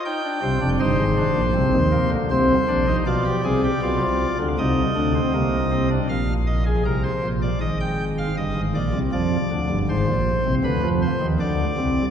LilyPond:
<<
  \new Staff \with { instrumentName = "Pipe organ" } { \time 4/4 \key c \phrygian \tempo 4 = 79 << { g''4 c''2 c''4 | d''2 ees''2 | f''8 ees''16 aes'16 bes'16 c''8 d''16 ees''16 g''8 f''16 ees''8 d''8 | d''4 c''4 b'8 c''8 d''4 | } \\ { ees'16 d'16 c'16 d'16 ees'8 d'8 c'8 bes8 c'8 d'16 ees'16 | f'16 g'16 aes'16 g'16 f'4 ees'8 d'16 c'16 bes8 c'16 d'16 | r1 | r1 | } >> }
  \new Staff \with { instrumentName = "Pipe organ" } { \clef bass \time 4/4 \key c \phrygian r8 <c, c>16 <f,, f,>16 <g,, g,>16 <aes,, aes,>8 <bes,, bes,>16 <c, c>16 <ees, ees>8 <d, d>16 <c, c>8 <bes,, bes,>8 | <b,, b,>8 <c, c>8 <b,, b,>16 <c, c>8 <d, d>16 <c, c>8 <d, d>8 <c, c>4 | <bes,, bes,>4 <c, c>8 <bes,, bes,>8 <aes,, aes,>4 <g,, g,>16 <aes,, aes,>16 <bes,, bes,>16 <c, c>16 | <f, f>8 <d, d>16 <g,, g,>16 <aes,, aes,>16 <bes,, bes,>8 <c, c>16 <d, d>16 <f, f>8 <ees, ees>16 <d, d>8 <c, c>8 | }
>>